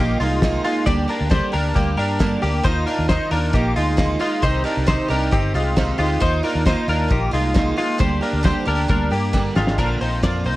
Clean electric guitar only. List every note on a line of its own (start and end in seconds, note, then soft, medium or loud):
0.00 0.20 A#3 medium
0.00 0.19 G4 medium
0.20 0.62 G#3 medium
0.20 0.62 F4 medium
0.64 0.87 G#3 medium
0.64 0.86 F4 medium
0.86 1.09 G4 medium
0.86 1.09 D5 loud
1.09 1.32 D4 medium
1.09 1.30 A#4 medium
1.31 1.54 G4 medium
1.31 1.53 C5 medium
1.53 1.76 D4 medium
1.53 1.76 A#4 medium
1.75 1.98 A#3 medium
1.75 1.98 G4 medium
1.98 2.40 D4 medium
1.98 2.40 A#4 medium
2.42 2.65 A#3 medium
2.42 2.65 G4 medium
2.64 2.87 D#4 medium
2.64 2.86 C5 loud
2.86 3.09 D4 medium
2.86 3.08 A#4 medium
3.09 3.32 D#4 medium
3.09 3.31 C5 medium
3.31 3.54 D4 medium
3.31 3.54 A#4 medium
3.54 3.76 A#3 medium
3.54 3.76 G4 medium
3.76 4.18 G#3 medium
3.76 4.18 F4 medium
4.21 4.43 G#3 medium
4.21 4.43 F4 loud
4.43 4.66 D#4 medium
4.43 4.65 C5 loud
4.65 4.88 D4 medium
4.65 4.87 A#4 medium
4.87 5.10 D#4 medium
4.87 5.10 C5 medium
5.10 5.33 D4 medium
5.10 5.32 A#4 medium
5.32 5.55 C4 medium
5.32 5.54 G4 medium
5.55 5.97 G#3 medium
5.55 5.97 F4 medium
5.99 6.22 G#3 medium
5.99 6.21 F4 medium
6.22 6.44 D#4 medium
6.22 6.44 C5 loud
6.44 6.67 D4 medium
6.44 6.66 A#4 medium
6.67 6.89 D#4 medium
6.67 6.89 C5 medium
6.89 7.12 D4 medium
6.89 7.11 A#4 medium
7.12 7.34 A#3 medium
7.12 7.33 G4 medium
7.33 7.76 G#3 medium
7.33 7.75 F4 medium
7.78 8.00 G#3 medium
7.78 8.00 F4 loud
8.00 8.23 G4 medium
8.00 8.22 C5 loud
8.22 8.45 D4 medium
8.22 8.45 A#4 medium
8.45 8.67 G4 medium
8.45 8.67 C5 medium
8.68 8.89 D4 medium
8.68 8.88 A#4 medium
8.89 9.12 D4 medium
8.89 9.12 A#4 medium
9.12 9.54 A#3 medium
9.12 9.53 G4 medium
9.56 9.79 G#3 medium
9.56 9.78 F4 medium
9.79 10.01 D4 medium
9.79 10.01 A#4 loud
10.01 10.24 D#4 medium
10.01 10.23 C5 medium
10.24 10.46 F4 soft
10.24 10.46 D5 medium
10.46 10.56 D#4 soft
10.46 10.56 C5 medium